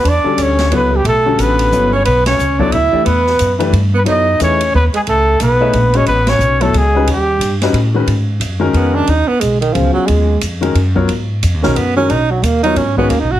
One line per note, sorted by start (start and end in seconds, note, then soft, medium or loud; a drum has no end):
0.00 0.24 E2 medium
0.00 0.39 D4 medium
0.00 0.10 B4 medium
0.05 0.44 D5 medium
0.05 ride medium
0.24 0.69 D3 medium
0.24 0.69 G3 medium
0.24 0.69 C#4 medium
0.24 0.69 F#4 medium
0.24 0.69 A4 medium
0.24 muted upright bass stroke soft
0.37 0.70 D2 medium
0.37 0.69 C#4 medium
0.37 hi-hat pedal medium
0.37 ride medium
0.42 0.74 C#5 medium
0.58 snare medium
0.58 ride soft
0.70 1.04 C#2 medium
0.70 0.90 F#3 medium
0.70 0.93 B3 medium
0.70 0.90 B3 medium
0.70 0.91 E4 medium
0.70 0.91 A4 medium
0.70 0.91 C#5 medium
0.70 ride medium
0.76 0.98 B4 medium
0.92 1.04 G3 medium
0.96 1.07 G4 medium
1.04 1.37 B1 medium
1.04 1.40 A3 medium
1.04 1.42 A4 medium
1.04 ride medium
1.26 1.70 D3 medium
1.26 1.70 G3 medium
1.26 1.70 C#4 medium
1.26 1.70 F#4 medium
1.26 1.70 A4 medium
1.39 1.71 A1 medium
1.39 1.92 B3 medium
1.39 1.94 B4 medium
1.39 hi-hat pedal medium
1.39 ride medium
1.59 ride medium
1.72 2.05 G1 medium
1.72 1.91 F#3 medium
1.72 1.91 B3 soft
1.72 1.92 E4 medium
1.72 1.91 A4 medium
1.72 1.91 C#5 medium
1.72 hi-hat pedal medium
1.92 2.04 C#4 medium
1.92 2.05 C#5 medium
2.05 2.38 B1 medium
2.05 2.24 B3 medium
2.05 2.25 B4 loud
2.05 ride medium
2.26 2.60 C#4 medium
2.26 2.61 C#5 loud
2.26 snare medium
2.26 ride medium
2.39 2.72 C#2 medium
2.39 hi-hat pedal medium
2.59 2.71 F#3 medium
2.59 2.71 B3 medium
2.59 2.73 D4 medium
2.59 2.71 E4 medium
2.59 2.72 A4 medium
2.59 2.72 C#5 medium
2.59 2.74 D5 medium
2.59 kick medium
2.72 2.92 D2 medium
2.72 3.03 E4 medium
2.72 3.05 E5 loud
2.72 ride medium
2.92 3.04 E3 medium
2.92 3.05 A3 medium
2.92 3.05 D4 medium
2.92 3.04 G4 medium
2.92 3.05 D5 medium
2.92 muted upright bass stroke soft
3.04 3.38 E2 medium
3.04 3.55 B3 medium
3.04 3.56 B4 medium
3.04 ride medium
3.27 snare soft
3.39 3.72 F#2 medium
3.39 hi-hat pedal medium
3.39 ride medium
3.59 3.71 E3 medium
3.59 3.71 A3 medium
3.59 3.72 D4 medium
3.59 3.71 G4 medium
3.59 3.71 B4 medium
3.59 ride soft
3.72 4.05 G2 medium
3.72 ride medium
3.94 4.00 B3 medium
3.98 4.03 B4 medium
4.04 4.39 F#2 medium
4.04 4.24 F#3 medium
4.04 4.25 B3 medium
4.04 4.38 D#4 medium
4.04 4.24 E4 medium
4.04 4.25 A4 medium
4.04 4.25 C#5 medium
4.04 ride medium
4.11 4.40 D#5 medium
4.39 4.72 E2 medium
4.39 4.58 E3 medium
4.39 4.58 A3 medium
4.39 4.72 C#4 medium
4.39 4.58 D#4 medium
4.39 4.59 G#4 medium
4.39 4.59 B4 medium
4.39 4.73 C#5 loud
4.39 hi-hat pedal medium
4.39 ride medium
4.60 ride medium
4.74 4.93 D#2 medium
4.74 4.84 B3 medium
4.74 4.84 B4 medium
4.94 5.00 G#3 medium
4.94 5.01 G#4 medium
4.94 ride soft
5.07 5.39 C#2 medium
5.07 5.38 A3 medium
5.07 5.39 A4 medium
5.07 ride medium
5.40 5.72 B1 medium
5.40 5.96 B3 medium
5.40 5.98 B4 medium
5.40 hi-hat pedal medium
5.40 ride medium
5.60 5.72 A3 medium
5.60 5.72 D#4 medium
5.60 5.72 G#4 medium
5.60 5.72 C#5 medium
5.60 5.73 E5 medium
5.73 6.05 A#1 loud
5.73 ride medium
5.93 6.06 G#3 medium
5.93 6.07 C#4 medium
5.93 6.06 C#4 medium
5.93 6.06 F#4 medium
5.93 6.06 B4 medium
5.93 6.07 C#5 medium
5.93 6.06 D#5 medium
5.93 ride soft
6.06 6.38 A1 medium
6.06 6.30 B3 medium
6.06 6.31 B4 loud
6.06 ride medium
6.27 6.62 C#4 medium
6.27 6.63 C#5 medium
6.27 snare medium
6.27 ride medium
6.39 6.72 B1 loud
6.39 hi-hat pedal medium
6.61 6.73 F#3 medium
6.61 6.77 A3 medium
6.61 6.73 B3 medium
6.61 6.73 E4 medium
6.61 6.79 A4 medium
6.61 6.73 A4 medium
6.61 6.73 C#5 medium
6.61 ride soft
6.74 7.06 C#2 medium
6.74 7.07 G#3 medium
6.74 7.09 G#4 medium
6.74 ride medium
6.94 7.06 G3 medium
6.94 7.06 C#4 medium
6.94 7.07 D#4 medium
6.94 7.07 F#4 medium
6.94 7.07 B4 medium
7.06 7.38 D#2 medium
7.06 7.58 G3 medium
7.06 ride medium
7.12 7.60 G4 medium
7.39 7.72 G2 medium
7.39 hi-hat pedal medium
7.39 ride medium
7.61 7.73 G3 medium
7.61 7.73 C#4 medium
7.61 7.73 D#4 medium
7.61 7.74 F#4 medium
7.61 7.74 B4 medium
7.61 snare soft
7.61 ride soft
7.73 8.06 A2 medium
7.73 ride medium
7.94 8.06 D#3 medium
7.94 8.06 G#3 medium
7.94 8.06 C#4 medium
7.94 8.07 F#4 medium
7.94 8.07 B4 medium
8.07 8.39 G#2 medium
8.07 ride medium
8.40 8.73 F#2 medium
8.40 hi-hat pedal medium
8.40 ride medium
8.59 9.04 D#3 medium
8.59 9.04 G#3 medium
8.59 9.05 C#4 medium
8.59 9.05 F#4 medium
8.59 9.05 A#4 medium
8.73 9.07 F2 medium
8.73 8.96 B3 medium
8.73 ride soft
8.95 9.11 D4 medium
9.07 9.27 D#2 medium
9.07 9.29 D#4 medium
9.07 ride medium
9.28 9.42 B3 medium
9.40 9.74 B1 medium
9.40 9.60 G#3 medium
9.40 hi-hat pedal medium
9.40 ride medium
9.61 9.74 D#3 medium
9.61 ride soft
9.73 9.94 C#2 medium
9.73 10.24 C#3 soft
9.73 9.92 F3 medium
9.73 10.25 F#3 soft
9.73 10.25 B3 soft
9.73 10.25 F4 soft
9.73 10.25 G#4 medium
9.73 ride medium
9.93 10.08 F#3 medium
10.06 10.41 D#2 medium
10.06 10.41 G#3 medium
10.06 ride medium
10.41 10.74 F2 medium
10.41 hi-hat pedal medium
10.41 ride medium
10.61 10.73 D#3 medium
10.61 10.74 G#3 medium
10.61 10.74 C#4 medium
10.61 10.74 F#4 medium
10.61 10.74 A#4 medium
10.61 ride soft
10.74 11.07 F#2 medium
10.74 ride medium
10.95 11.07 F#3 medium
10.95 11.07 B3 medium
10.95 11.07 F4 medium
10.95 11.08 A#4 medium
10.95 11.08 C#5 medium
10.95 kick medium
11.08 11.41 G#2 medium
11.08 ride medium
11.43 11.54 F2 medium
11.43 hi-hat pedal medium
11.43 ride medium
11.54 11.65 D#2 medium
11.63 11.75 B1 medium
11.63 11.75 D#3 medium
11.63 11.75 G#3 medium
11.63 11.78 C#4 medium
11.63 11.75 C#4 medium
11.63 11.75 F#4 medium
11.63 11.75 A#4 medium
11.63 snare medium
11.76 12.08 F#2 medium
11.76 11.96 B3 medium
11.76 ride medium
11.96 12.08 D#3 medium
11.96 12.08 G#3 medium
11.96 12.11 C#4 medium
11.96 12.09 C#4 medium
11.96 12.09 F#4 medium
11.96 12.09 A#4 medium
12.09 12.42 B1 medium
12.09 12.32 D#4 medium
12.09 ride medium
12.31 12.45 F#3 medium
12.42 12.75 D#2 medium
12.42 12.62 A#3 medium
12.42 hi-hat pedal medium
12.42 ride medium
12.63 12.76 F#3 medium
12.63 12.76 B3 medium
12.63 12.78 D#4 loud
12.63 12.76 F4 medium
12.63 12.76 A#4 medium
12.63 12.76 C#5 medium
12.63 ride soft
12.76 13.09 G#2 medium
12.76 12.97 C#4 medium
12.76 ride medium
12.97 13.09 D#3 medium
12.97 13.09 G#3 medium
12.97 13.11 B3 medium
12.97 13.09 C#4 medium
12.97 13.09 F#4 medium
12.97 13.09 C#5 medium
12.97 kick soft
13.09 13.23 D#2 medium
13.09 13.21 A#3 medium
13.09 ride medium
13.20 13.32 B1 medium
13.20 13.33 D#4 medium
13.31 13.40 G#1 medium
13.31 13.40 F#4 medium